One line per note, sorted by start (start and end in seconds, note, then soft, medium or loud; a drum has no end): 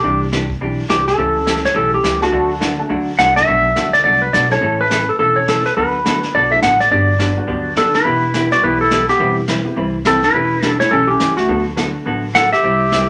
0.00 0.50 C2 medium
0.00 0.24 C3 medium
0.00 0.24 E3 medium
0.00 0.19 C4 medium
0.00 0.20 D4 soft
0.00 0.20 E4 soft
0.00 0.20 G4 medium
0.04 0.24 D4 medium
0.04 0.24 G4 medium
0.04 brush sweep soft
0.32 0.44 C3 medium
0.32 0.44 E3 medium
0.32 0.44 D4 medium
0.32 0.44 G4 medium
0.32 snare medium
0.32 hi-hat pedal soft
0.50 kick soft
0.60 0.85 B1 medium
0.60 0.81 C3 soft
0.60 0.81 E3 soft
0.60 0.81 D4 soft
0.60 0.81 G4 medium
0.60 brush sweep soft
0.89 1.14 C2 medium
0.89 1.01 C3 medium
0.89 1.01 E3 medium
0.89 1.01 D4 medium
0.89 1.01 G4 medium
0.89 1.07 G4 medium
0.89 snare medium
0.89 hi-hat pedal soft
1.07 1.61 A4 medium
1.07 snare soft
1.18 1.64 C#2 medium
1.18 1.38 C#3 medium
1.18 1.38 E3 medium
1.18 1.38 A3 medium
1.18 1.38 C#4 medium
1.18 1.39 G4 medium
1.18 brush sweep soft
1.46 1.58 C#3 medium
1.46 1.58 E3 medium
1.46 1.58 A3 medium
1.46 1.58 C#4 medium
1.46 1.58 G4 medium
1.46 snare medium
1.46 hi-hat pedal medium
1.57 snare soft
1.65 1.77 C#5 medium
1.65 snare soft
1.74 2.00 B1 medium
1.74 1.95 C#3 medium
1.74 1.95 E3 medium
1.74 1.95 A3 soft
1.74 1.95 C#4 medium
1.74 1.95 G4 medium
1.74 1.94 A4 loud
1.74 brush sweep soft
1.94 2.23 G4 medium
2.03 2.28 C#2 medium
2.03 2.15 C#3 medium
2.03 2.15 E3 medium
2.03 2.15 A3 medium
2.03 2.16 C#4 medium
2.03 2.16 G4 medium
2.03 snare medium
2.03 hi-hat pedal medium
2.21 2.59 A3 medium
2.21 2.59 D4 medium
2.21 2.59 F#4 medium
2.21 2.49 F#4 medium
2.21 2.60 A4 loud
2.21 snare soft
2.32 2.78 D2 medium
2.32 2.52 D3 medium
2.32 2.53 F#3 medium
2.32 2.53 A3 medium
2.32 2.53 D4 medium
2.32 2.53 F#4 medium
2.32 brush sweep medium
2.60 2.72 D3 medium
2.60 2.72 F#3 medium
2.60 2.72 A3 medium
2.60 2.73 D4 medium
2.60 2.73 F#4 medium
2.60 snare medium
2.60 hi-hat pedal medium
2.78 2.89 A3 medium
2.78 2.89 D4 medium
2.78 2.89 F#4 medium
2.78 2.89 A4 medium
2.89 3.14 D2 medium
2.89 3.09 D3 soft
2.89 3.10 F#3 soft
2.89 3.10 A3 medium
2.89 3.10 D4 medium
2.89 3.10 F#4 medium
2.89 brush sweep soft
3.18 3.42 C2 medium
3.18 3.30 D3 medium
3.18 3.30 F#3 medium
3.18 3.30 A3 medium
3.18 3.30 D4 medium
3.18 3.30 F#4 medium
3.18 3.36 F#5 loud
3.18 snare medium
3.18 hi-hat pedal medium
3.35 3.46 B3 medium
3.35 3.46 D4 medium
3.35 3.46 F#4 medium
3.35 3.46 A4 medium
3.35 3.95 E5 loud
3.35 snare soft
3.47 3.70 B1 medium
3.47 3.67 B2 medium
3.47 3.67 F#3 medium
3.47 3.67 A3 medium
3.47 3.67 D4 medium
3.47 3.67 F#4 medium
3.47 brush sweep soft
3.76 3.87 B2 medium
3.76 3.87 F#3 medium
3.76 3.87 A3 medium
3.76 3.87 D4 medium
3.76 3.88 F#4 medium
3.76 snare medium
3.76 hi-hat pedal medium
3.93 4.03 D5 loud
3.93 snare soft
4.04 4.29 C2 medium
4.04 4.24 B2 medium
4.04 4.24 F#3 medium
4.04 4.24 A3 soft
4.04 4.25 D4 soft
4.04 4.25 F#4 medium
4.04 4.21 D5 loud
4.04 brush sweep soft
4.22 4.33 B4 medium
4.33 4.57 B1 medium
4.33 4.44 B2 medium
4.33 4.44 F#3 medium
4.33 4.45 A3 medium
4.33 4.45 D4 medium
4.33 4.45 F#4 medium
4.33 4.51 D5 loud
4.33 snare medium
4.33 hi-hat pedal medium
4.50 4.88 A3 medium
4.50 4.88 C#4 medium
4.50 4.88 E4 medium
4.50 4.89 A4 medium
4.50 4.81 C#5 loud
4.50 snare soft
4.61 5.07 A1 medium
4.61 4.81 C#3 medium
4.61 4.81 E3 medium
4.61 4.82 A3 medium
4.61 4.82 C#4 medium
4.61 4.82 A4 medium
4.61 brush sweep soft
4.81 5.09 B4 loud
4.90 5.01 C#3 medium
4.90 5.02 E3 medium
4.90 5.02 A3 medium
4.90 5.02 C#4 medium
4.90 5.02 A4 medium
4.90 snare medium
4.90 hi-hat pedal medium
5.09 5.18 A4 medium
5.19 5.65 E1 medium
5.19 5.39 C#3 soft
5.19 5.39 E3 medium
5.19 5.39 A3 soft
5.19 5.39 C#4 medium
5.19 5.37 A4 loud
5.19 5.39 A4 medium
5.19 brush sweep soft
5.36 5.48 C#5 medium
5.47 5.59 C#3 medium
5.47 5.59 E3 medium
5.47 5.63 A3 medium
5.47 5.59 A3 medium
5.47 5.63 C#4 medium
5.47 5.59 C#4 medium
5.47 5.64 E4 soft
5.47 5.64 A4 medium
5.47 5.65 A4 medium
5.47 5.59 A4 medium
5.47 snare medium
5.47 hi-hat pedal medium
5.65 5.76 B4 medium
5.65 snare soft
5.77 6.22 D2 medium
5.77 5.96 D3 medium
5.77 5.96 F#3 medium
5.77 5.97 B3 medium
5.77 5.96 F#4 medium
5.77 5.97 A4 medium
5.77 6.35 B4 medium
5.77 brush sweep soft
6.05 6.16 D3 medium
6.05 6.16 F#3 medium
6.05 6.20 A3 medium
6.05 6.21 B3 medium
6.05 6.17 B3 medium
6.05 6.21 D4 medium
6.05 6.21 F#4 medium
6.05 6.17 F#4 medium
6.05 6.17 A4 medium
6.05 snare medium
6.05 hi-hat pedal soft
6.23 snare soft
6.34 6.58 B1 medium
6.34 6.54 D3 soft
6.34 6.54 F#3 soft
6.34 6.54 B3 soft
6.34 6.54 F#4 medium
6.34 6.54 A4 medium
6.34 6.52 D5 medium
6.34 brush sweep soft
6.50 6.61 A3 medium
6.50 6.61 B3 medium
6.50 6.61 D4 medium
6.50 6.61 E4 medium
6.50 6.62 E5 medium
6.62 6.86 A1 medium
6.62 6.73 D3 medium
6.62 6.74 F#3 medium
6.62 6.74 B3 medium
6.62 6.74 F#4 medium
6.62 6.74 A4 medium
6.62 6.79 F#5 medium
6.62 snare medium
6.62 hi-hat pedal medium
6.80 6.91 D5 medium
6.80 snare soft
6.91 7.37 G1 medium
6.91 7.10 D3 medium
6.91 7.10 F#3 medium
6.91 7.11 B3 medium
6.91 7.11 D4 medium
6.91 7.11 G4 medium
6.91 7.73 D5 medium
6.91 brush sweep soft
7.19 7.30 D3 medium
7.19 7.30 F#3 medium
7.19 7.30 B3 medium
7.19 7.31 D4 medium
7.19 7.31 G4 medium
7.19 snare medium
7.19 hi-hat pedal medium
7.37 7.74 G3 medium
7.37 7.74 B3 medium
7.37 7.75 D4 medium
7.37 7.75 F#4 medium
7.47 7.94 D2 medium
7.47 7.67 D3 soft
7.47 7.67 F#3 soft
7.47 7.67 B3 soft
7.47 7.68 D4 medium
7.47 7.68 G4 medium
7.47 brush sweep soft
7.76 7.88 D3 medium
7.76 7.88 F#3 medium
7.76 7.88 B3 medium
7.76 7.93 D4 medium
7.76 7.88 D4 medium
7.76 7.88 G4 medium
7.76 7.93 A4 medium
7.76 snare medium
7.76 hi-hat pedal medium
7.94 8.48 E4 medium
7.94 8.48 B4 medium
7.94 snare soft
8.04 8.51 E1 medium
8.04 8.24 E3 medium
8.04 8.25 B3 medium
8.04 8.25 E4 medium
8.04 8.25 G4 medium
8.04 brush sweep soft
8.34 8.45 E3 medium
8.34 8.45 B3 medium
8.34 8.45 E4 medium
8.34 8.46 G4 medium
8.34 snare medium
8.34 hi-hat pedal medium
8.50 8.88 G3 medium
8.50 8.88 B3 medium
8.50 8.88 E4 medium
8.50 8.66 F#4 medium
8.50 8.89 G4 medium
8.50 8.62 D5 medium
8.50 snare soft
8.62 9.08 B1 medium
8.62 8.83 E3 medium
8.62 8.83 B3 medium
8.62 8.83 E4 medium
8.62 8.81 E4 medium
8.62 8.83 G4 medium
8.62 8.81 B4 medium
8.62 brush sweep soft
8.81 9.08 E4 medium
8.81 9.09 A4 medium
8.91 9.02 E3 medium
8.91 9.02 B3 medium
8.91 9.03 E4 medium
8.91 9.03 G4 medium
8.91 snare medium
8.91 hi-hat pedal medium
9.09 9.36 B3 medium
9.09 9.36 G4 medium
9.09 snare soft
9.19 9.65 E1 medium
9.19 9.39 E3 medium
9.19 9.39 G3 medium
9.19 9.35 B3 medium
9.19 9.35 C4 medium
9.19 9.39 C4 medium
9.19 9.35 E4 medium
9.19 9.39 E4 medium
9.19 9.35 G4 medium
9.19 9.40 B4 medium
9.19 brush sweep medium
9.48 9.59 E3 medium
9.48 9.59 G3 medium
9.48 9.59 C4 medium
9.48 9.59 E4 medium
9.48 9.60 B4 medium
9.48 snare medium
9.48 hi-hat pedal medium
9.64 9.75 B3 medium
9.64 9.75 C4 medium
9.64 9.75 E4 medium
9.64 9.75 G4 medium
9.76 10.22 C2 medium
9.76 9.96 E3 soft
9.76 9.96 G3 medium
9.76 9.97 C4 soft
9.76 9.97 E4 medium
9.76 9.97 B4 medium
9.76 brush sweep soft
10.05 10.16 E3 medium
10.05 10.17 G3 medium
10.05 10.17 C4 medium
10.05 10.22 C4 medium
10.05 10.17 E4 medium
10.05 10.22 A4 medium
10.05 10.17 B4 medium
10.05 snare medium
10.05 hi-hat pedal medium
10.23 10.64 E4 medium
10.23 10.69 B4 loud
10.23 snare soft
10.33 10.79 E1 medium
10.33 10.53 E3 medium
10.33 10.53 A3 medium
10.33 10.54 C#4 medium
10.33 10.54 G4 medium
10.33 brush sweep soft
10.62 10.74 E3 medium
10.62 10.74 A3 medium
10.62 10.74 C#4 medium
10.62 10.76 D4 medium
10.62 10.74 G4 medium
10.62 snare medium
10.62 hi-hat pedal medium
10.69 10.80 A4 loud
10.79 11.17 A3 medium
10.79 11.17 C#4 medium
10.79 11.17 E4 medium
10.79 10.90 E4 medium
10.79 11.17 G4 medium
10.79 10.91 C#5 loud
10.79 snare soft
10.91 11.15 B1 medium
10.91 11.11 E3 medium
10.91 11.11 A3 soft
10.91 11.08 C#4 medium
10.91 11.11 C#4 medium
10.91 11.11 G4 medium
10.91 11.07 A4 loud
10.91 brush sweep soft
11.07 11.36 C#4 medium
11.07 11.37 G4 medium
11.20 11.31 E3 medium
11.20 11.31 A3 medium
11.20 11.31 C#4 medium
11.20 11.32 G4 medium
11.20 snare medium
11.20 hi-hat pedal medium
11.37 11.64 A3 medium
11.37 11.64 F#4 medium
11.37 snare soft
11.48 11.94 D2 medium
11.48 11.68 D3 medium
11.48 11.68 F#3 medium
11.48 11.64 A3 medium
11.48 11.64 B3 medium
11.48 11.68 B3 medium
11.48 11.64 D4 medium
11.48 11.64 F#4 medium
11.48 11.69 F#4 medium
11.48 11.69 A4 medium
11.48 brush sweep medium
11.76 11.88 D3 medium
11.76 11.88 F#3 medium
11.76 12.20 A3 medium
11.76 12.20 B3 medium
11.76 11.88 B3 medium
11.76 12.20 D4 medium
11.76 11.88 F#4 medium
11.76 12.20 F#4 medium
11.76 11.88 A4 medium
11.76 snare medium
11.76 hi-hat pedal soft
12.06 12.51 A1 medium
12.06 12.25 D3 soft
12.06 12.25 F#3 soft
12.06 12.26 B3 medium
12.06 12.26 F#4 medium
12.06 12.26 A4 soft
12.06 brush sweep soft
12.34 12.45 D3 medium
12.34 12.45 F#3 medium
12.34 12.46 B3 medium
12.34 12.46 F#4 medium
12.34 12.54 A4 medium
12.34 12.46 A4 medium
12.34 12.52 F#5 medium
12.34 snare medium
12.34 hi-hat pedal medium
12.53 13.08 G4 medium
12.53 13.09 E5 medium
12.53 snare soft
12.63 13.09 C2 medium
12.63 12.83 C3 medium
12.63 12.83 G3 medium
12.63 12.83 C4 medium
12.63 12.83 E4 medium
12.63 12.83 G4 medium
12.63 brush sweep soft
12.92 13.03 C3 medium
12.92 13.03 G3 medium
12.92 13.03 C4 medium
12.92 13.03 E4 medium
12.92 13.03 G4 medium
12.92 snare medium
12.92 hi-hat pedal medium